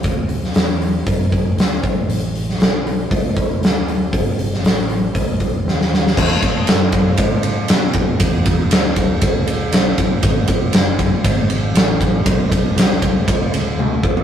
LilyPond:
<<
  \new Staff \with { instrumentName = "Fingered electric bass" } { \clef bass \time 4/4 \key e \mixolydian \tempo 4 = 118 d,4 e,4 fis,4 d,8 r8 | a,,4 b,,4 cis,4 d,4 | g,,4 a,,4 b,,4 dis,4 | e,8 r8 fis,4 gis,4 b,4 |
e,4 d,4 cis,4 b,,8 r8 | gis,,8 r8 fis,,4 gis,,4 a,,4 | b,,4 c,4 cis,4 d,4 | }
  \new DrumStaff \with { instrumentName = "Drums" } \drummode { \time 4/4 <hho bd>8 hho16 sn16 <hho sn>8 hho8 <hho bd>8 <hho bd>8 <hho sn>8 <hho bd>8 | hho8 hho16 sn16 <hho sn>8 hho8 <hho bd>8 <hho bd>8 <hho sn>8 hho8 | <hho bd>8 hho16 sn16 <hho sn>8 hho8 <hho bd>8 <hho bd>8 sn16 sn16 sn16 sn16 | <cymc bd>8 <bd cymr>8 <cymr sn>8 <bd cymr>8 <bd cymr>8 cymr8 <cymr sn>8 <bd cymr>8 |
<bd cymr>8 <bd cymr>8 <cymr sn>8 <bd cymr>8 <bd cymr>8 cymr8 <cymr sn>8 <bd cymr>8 | <bd cymr>8 <bd cymr>8 <cymr sn>8 <bd cymr>8 <bd cymr>8 cymr8 <cymr sn>8 <bd cymr>8 | <bd cymr>8 <bd cymr>8 <cymr sn>8 <bd cymr>8 <bd cymr>8 cymr8 tommh8 bd16 tomfh16 | }
>>